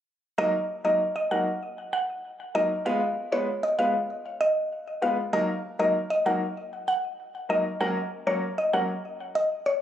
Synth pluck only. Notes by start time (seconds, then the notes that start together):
0.38 D#5
0.85 D#5
1.16 D#5
1.31 F#5
1.93 F#5
2.55 D#5
2.86 F5
3.32 C#5
3.63 D#5
3.79 F5
4.41 D#5
5.02 F5
5.33 D#5
5.79 D#5
6.10 D#5
6.26 F#5
6.88 F#5
7.50 D#5
7.81 F#5
8.27 C#5
8.58 D#5
8.73 F#5
9.35 D#5
9.66 C#5